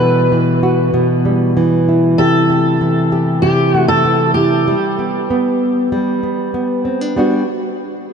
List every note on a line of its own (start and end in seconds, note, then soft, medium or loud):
0.00 0.92 B2 medium
0.00 0.31 E3 medium
0.00 1.25 G3 medium
0.00 1.88 E4 medium
0.00 0.62 F#4 medium
0.00 0.89 B4 loud
0.32 1.56 E3 medium
0.63 2.18 F#4 medium
0.94 2.18 B2 medium
1.25 2.49 G3 medium
1.57 2.81 E3 medium
1.89 4.37 E4 medium
2.18 3.42 C3 medium
2.18 3.12 G4 medium
2.18 3.39 A4 loud
2.50 3.73 A3 medium
2.81 4.04 E3 medium
3.12 6.62 G4 medium
3.42 4.74 C3 medium
3.42 3.86 G4 loud
3.74 4.74 A3 medium
3.88 4.32 A4 loud
4.05 4.67 E3 medium
4.34 4.74 E4 medium
4.34 6.49 G4 medium
4.68 5.92 G3 medium
4.99 5.30 B3 medium
5.30 6.23 B3 medium
5.92 7.16 G3 medium
6.23 6.54 B3 medium
6.54 7.17 B3 medium
6.85 7.01 C4 medium
7.01 7.17 D4 medium
7.16 7.41 G3 medium
7.16 7.42 B3 medium
7.16 7.42 D4 medium
7.16 7.43 F#4 medium